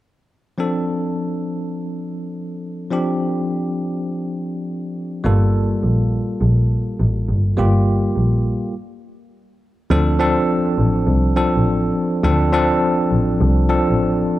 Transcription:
0.58 2.87 F3 medium
0.58 2.87 C4 medium
0.58 2.88 D4 medium
0.58 2.88 A4 medium
2.90 5.20 F3 medium
2.90 5.20 C4 medium
2.90 5.21 D4 medium
2.90 5.21 G4 medium
5.24 5.65 G1 loud
5.24 7.53 G3 medium
5.24 7.53 A#3 medium
5.24 7.54 F4 medium
5.24 7.54 A4 medium
5.83 6.07 A#1 medium
6.41 6.65 A#1 loud
6.99 7.24 A1 medium
7.28 7.45 G1 medium
7.57 7.98 G1 loud
7.57 8.71 G3 medium
7.57 8.71 A#3 medium
7.57 8.72 F4 medium
7.57 8.72 G4 medium
8.16 8.40 A#1 medium
9.90 10.31 D2 loud
9.90 10.16 F3 medium
9.90 10.16 C4 medium
9.90 10.16 D4 medium
9.90 10.17 A4 medium
10.19 11.16 F3 medium
10.19 11.16 C4 medium
10.19 11.17 D4 medium
10.19 11.17 A4 medium
10.78 11.06 A1 medium
11.07 11.31 C2 medium
11.36 12.13 F3 medium
11.36 12.14 C4 medium
11.36 12.14 D4 medium
11.36 12.14 A4 medium
11.56 11.64 A1 medium
12.23 12.64 D2 loud
12.23 12.49 F3 medium
12.23 12.49 C4 medium
12.23 12.50 D4 medium
12.23 12.50 A4 medium
12.52 13.49 F3 medium
12.52 13.50 C4 medium
12.52 13.50 D4 medium
12.52 13.50 A4 medium
13.11 13.35 A1 medium
13.40 13.64 C2 loud
13.69 14.39 F3 medium
13.69 14.39 C4 medium
13.69 14.39 D4 medium
13.69 14.39 A4 medium
13.89 13.97 A1 medium

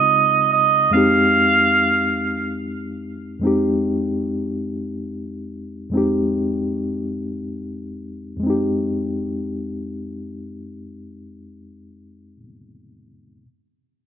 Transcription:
0.00 0.88 C#3 medium
0.00 0.89 G#3 medium
0.00 0.89 C4 medium
0.00 0.90 D#4 medium
0.00 0.91 F4 medium
0.00 0.48 D#5 loud
0.53 0.91 D#5 loud
0.90 3.37 F2 medium
0.90 3.38 G#3 medium
0.90 3.39 C4 medium
0.90 2.56 F5 loud
0.95 3.40 D#4 medium
0.95 3.41 G4 medium
3.39 5.87 F2 medium
3.39 5.88 G#3 medium
3.39 5.89 C4 medium
3.45 5.90 D#4 medium
3.45 5.91 G4 medium
5.90 8.35 F2 medium
5.90 8.38 G#3 medium
5.90 8.39 C4 medium
5.95 8.40 D#4 medium
5.95 8.41 G4 medium
8.36 12.36 F2 medium
8.36 12.37 G#3 medium
8.43 12.39 C4 medium
8.43 12.41 D#4 medium
8.50 12.42 G4 medium

